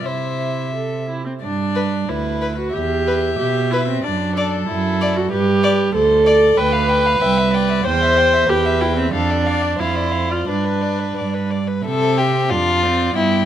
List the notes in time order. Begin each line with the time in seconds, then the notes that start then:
0.05 C3 E4 C5 E5
0.75 A4
1.09 E4
1.26 C4
1.42 G2 D4 D5
1.75 B4
2.09 D2 E4 B4
2.42 B4
2.58 F#4
2.73 E2 G4 E5
3.07 B4
3.39 B2 G4
3.71 E4 B4
3.88 C4
4.04 F#2 D4 D5
4.37 A4 D5
4.68 F#2 E4
5.01 D5
5.17 F#4
5.31 G2 G4 B4
5.64 D5
5.94 D2 A4 C5
6.26 D5
6.57 D2 B4 G5
6.73 F5
6.89 G5
7.06 F5
7.21 C2 E5 G5
7.38 E5
7.53 D5 G5
7.70 E5
7.85 E2 C5 G5
8.02 E5
8.18 G5
8.33 E5
8.49 E2 G4 B4 G5
8.66 E5
8.81 E4 G5
8.97 C4 E5
9.13 F2 D4 A4 F5
9.31 D5
9.46 D5 F5
9.62 D5
9.79 F2 E4 C5 F5
9.95 D5
10.12 F5
10.29 F4 D5
10.47 G2 D4 B4 D5
10.65 B4
10.82 D5
10.99 B4
11.17 G2 D5
11.34 B4
11.51 D5
11.67 B4
11.85 C3 C4 A4 E5
12.18 G4
12.49 F2 D4 F4 D5
12.83 C4
13.16 G2 B3 E4 G5